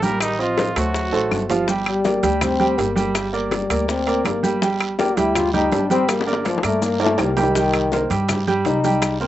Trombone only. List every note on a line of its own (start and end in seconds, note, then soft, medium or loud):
0.02 0.20 A#3 medium
0.20 0.41 D#3 medium
0.39 0.77 F3 medium
0.76 1.50 F#3 medium
1.86 2.44 G3 loud
2.42 2.81 C4 loud
2.79 3.15 A#3 medium
3.34 3.90 G3 medium
3.89 4.27 C4 medium
4.25 4.62 A#3 medium
4.99 5.19 G4 medium
5.17 5.37 E4 loud
5.36 5.53 F4 loud
5.54 5.74 D#4 loud
5.73 5.91 D4 medium
5.91 6.10 C4 loud
6.09 6.27 A#3 medium
6.28 6.44 D3 soft
6.46 6.66 F3 medium
6.64 6.85 A3 medium
6.83 7.01 A#3 medium
7.01 7.21 A3 medium
7.19 7.39 G3 medium
7.38 8.29 D#3 loud
8.66 9.17 D#4 loud
9.21 9.27 C4 medium